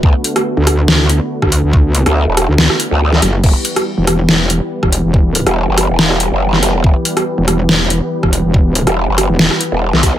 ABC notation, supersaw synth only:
X:1
M:4/4
L:1/8
Q:"Swing 16ths" 1/4=141
K:Dmix
V:1 name="Supersaw synth"
[D,A,B,FB]8- | [D,A,B,FB]8 | [E,G,B,GB]8- | [E,G,B,GB]8- |
[E,G,B,GB]8- | [E,G,B,GB]8 |]